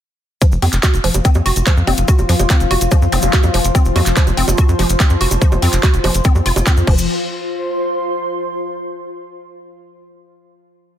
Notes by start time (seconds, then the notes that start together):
0.42 F3 F4, kick, closed hi-hat, maracas
0.52 F1, maracas
0.60 F2 C4 C5, open hi-hat, high bongo
0.73 F1, clap, closed hi-hat, maracas
0.83 F#4, kick, clap, closed hi-hat, high bongo, maracas
0.94 F1, closed hi-hat, maracas
0.98 C6
1.04 F1 F3, open hi-hat
1.14 F1, closed hi-hat, high bongo, maracas
1.25 C4, kick, closed hi-hat, maracas
1.34 F2, high bongo, maracas
1.46 F1 F#4, open hi-hat
1.56 F1, closed hi-hat, maracas
1.67 F3, kick, clap, closed hi-hat, high bongo, maracas
1.77 F2, maracas
1.87 F1 C4, open hi-hat, high bongo
1.97 F1, closed hi-hat, maracas
2.08 F#4, kick, closed hi-hat, maracas
2.18 F1, high bongo, maracas
2.29 F2 F3, open hi-hat
2.39 F1, closed hi-hat, high bongo, maracas
2.50 C4, kick, clap, closed hi-hat, maracas
2.60 F1, closed hi-hat, maracas
2.71 F1 F#4, open hi-hat, high bongo
2.81 F1, closed hi-hat, maracas
2.91 F3, kick, closed hi-hat, high bongo, maracas
3.02 F2, maracas
3.12 F1 C4, open hi-hat, zap
3.22 F1, closed hi-hat, high bongo, maracas
3.33 F#4, kick, clap, closed hi-hat, maracas
3.43 F2, high bongo, maracas
3.54 F1 F3, open hi-hat
3.64 F1, closed hi-hat, maracas
3.75 C4, kick, closed hi-hat, high bongo, maracas
3.85 F1, maracas
3.96 F2 F#4, open hi-hat, high bongo
4.06 F1, clap, closed hi-hat, maracas
4.17 F3, kick, clap, closed hi-hat, maracas
4.27 F1, closed hi-hat, high bongo, maracas
4.37 F1 C4, open hi-hat
4.48 F1, closed hi-hat, high bongo, maracas
4.58 F#4, kick, closed hi-hat, maracas
4.69 F2, maracas
4.79 F1 F3, open hi-hat, high bongo
4.89 F1, closed hi-hat, maracas
5.00 C4, kick, clap, closed hi-hat, high bongo, maracas
5.10 F2, maracas
5.21 F1 F#4, open hi-hat
5.31 F1, closed hi-hat, high bongo, maracas
5.42 F3, kick, closed hi-hat, maracas
5.52 F1, high bongo, maracas
5.62 F2 C4, open hi-hat
5.73 F1, clap, closed hi-hat, maracas
5.83 F#4, kick, clap, closed hi-hat, high bongo, maracas
5.94 F1, closed hi-hat, maracas
6.04 F1 F3, open hi-hat, high bongo
6.14 F1, closed hi-hat, maracas
6.24 C4, kick, closed hi-hat, maracas
6.35 F2, high bongo, maracas
6.46 F1 F4, open hi-hat
6.56 F1, closed hi-hat, high bongo, maracas
6.67 C4, kick, clap, closed hi-hat, maracas
6.77 F2, maracas
6.87 F1 F3 F4, kick, crash
6.94 C5
6.98 maracas
7.21 C6